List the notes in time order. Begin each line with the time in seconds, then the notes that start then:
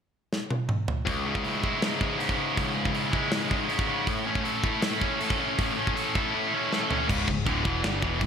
0.33 snare
0.51 high tom
0.69 mid tom
0.88 floor tom
1.06 C#2, kick, open hi-hat
1.26 G#2 C#3
1.35 kick
1.44 C#3 E4, open hi-hat
1.63 G#3 E4, kick
1.82 G#2 G#3, snare, open hi-hat
2.01 C#3, kick
2.19 G#2 E4, open hi-hat
2.29 kick
2.38 C#3
2.57 C#2, kick, open hi-hat
2.74 G#2 C#3
2.85 kick
2.93 C#3 E4, open hi-hat
3.12 G#3 E4, kick
3.32 G#2 G#3, snare, open hi-hat
3.50 C#3, kick
3.68 G#2 E4, open hi-hat
3.79 kick
3.88 C#3
4.06 A2, kick, open hi-hat
4.25 A3 C#4
4.35 kick
4.44 C#4 A4, open hi-hat
4.63 E4 A4, kick
4.82 A3 E4, snare, open hi-hat
5.01 C#4, kick
5.19 A3 A4, open hi-hat
5.30 kick
5.39 C#4
5.59 A2, kick, open hi-hat
5.77 A3 C#4
5.87 kick
5.96 C#4 A4, open hi-hat
6.15 E4 A4, kick
6.34 A3 E4
6.54 C#4
6.71 A3 A4, snare
6.91 C#4, floor tom
7.09 C#1 C#2 G#2 C#3, kick, crash, china
7.28 C#1 C#2 G#2, kick
7.46 D1 D2 A2 D3, kick, china
7.65 E1 E2 B2 E3, kick
7.83 G1 G2 D3 G3, snare, china
8.02 E1 E2 B2 E3, kick
8.20 C#1 C#2 G#2, kick, china